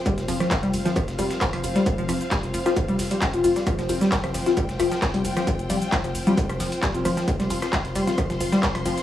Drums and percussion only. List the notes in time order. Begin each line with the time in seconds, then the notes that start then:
0.06 kick, closed hi-hat, ride, shaker
0.18 snare, closed hi-hat, shaker
0.28 open hi-hat, ride, shaker
0.40 cross-stick, snare, closed hi-hat, shaker
0.51 kick, snare, clap, closed hi-hat, ride, shaker
0.63 closed hi-hat
0.74 open hi-hat, ride, shaker
0.85 snare, closed hi-hat, shaker
0.96 kick, cross-stick, closed hi-hat, ride, shaker
1.08 snare, closed hi-hat, shaker
1.19 open hi-hat, ride, shaker
1.31 snare, closed hi-hat, shaker
1.41 kick, snare, clap, closed hi-hat, ride, shaker
1.53 cross-stick, closed hi-hat
1.64 open hi-hat, ride, shaker
1.76 snare, closed hi-hat, shaker
1.86 kick, closed hi-hat, ride, shaker
1.98 closed hi-hat, shaker
2.09 cross-stick, open hi-hat, ride, shaker
2.21 closed hi-hat, shaker
2.31 kick, snare, clap, closed hi-hat, ride, shaker
2.43 closed hi-hat, shaker
2.54 open hi-hat, ride, shaker
2.66 cross-stick, snare, closed hi-hat, shaker
2.77 kick, closed hi-hat, ride, shaker
2.88 closed hi-hat, shaker
2.99 snare, open hi-hat, ride, shaker
3.11 closed hi-hat, shaker
3.22 kick, cross-stick, snare, clap, closed hi-hat, ride, shaker
3.34 closed hi-hat, shaker
3.44 open hi-hat, ride, shaker
3.56 snare, closed hi-hat, shaker
3.67 kick, cross-stick, closed hi-hat, ride, shaker
3.79 snare, closed hi-hat, shaker
3.89 open hi-hat, ride, shaker
4.01 snare, closed hi-hat, shaker
4.12 kick, snare, clap, closed hi-hat, ride, shaker
4.24 cross-stick, closed hi-hat
4.34 open hi-hat, ride, shaker
4.46 snare, closed hi-hat, shaker
4.57 kick, closed hi-hat, ride, shaker
4.69 snare, closed hi-hat, shaker
4.80 cross-stick, open hi-hat, ride, shaker
4.92 snare, closed hi-hat, shaker
5.02 kick, snare, clap, closed hi-hat, ride, shaker
5.14 closed hi-hat
5.25 open hi-hat, ride, shaker
5.37 cross-stick, snare, closed hi-hat, shaker
5.47 kick, closed hi-hat, ride, shaker
5.59 closed hi-hat, shaker
5.70 open hi-hat, ride, shaker
5.82 closed hi-hat, shaker
5.92 kick, cross-stick, snare, clap, closed hi-hat, ride, shaker
6.04 closed hi-hat, shaker
6.15 open hi-hat, ride, shaker
6.27 closed hi-hat, shaker
6.38 kick, closed hi-hat, ride, shaker
6.49 cross-stick, closed hi-hat, shaker
6.60 snare, open hi-hat, ride, shaker
6.72 closed hi-hat, shaker
6.83 kick, snare, clap, closed hi-hat, ride, shaker
6.95 closed hi-hat, shaker
7.05 cross-stick, open hi-hat, ride, shaker
7.17 snare, closed hi-hat, shaker
7.28 kick, closed hi-hat, ride, shaker
7.40 snare, closed hi-hat, shaker
7.50 open hi-hat, ride, shaker
7.62 cross-stick, snare, closed hi-hat, shaker
7.73 kick, snare, clap, closed hi-hat, ride, shaker
7.85 closed hi-hat
7.96 open hi-hat, ride, shaker
8.07 snare, closed hi-hat, shaker
8.18 kick, cross-stick, closed hi-hat, ride, shaker
8.30 snare, closed hi-hat, shaker
8.41 open hi-hat, ride, shaker
8.53 snare, closed hi-hat, shaker
8.63 kick, snare, clap, closed hi-hat, ride, shaker
8.75 cross-stick, closed hi-hat
8.86 open hi-hat, ride, shaker
8.98 snare, closed hi-hat, shaker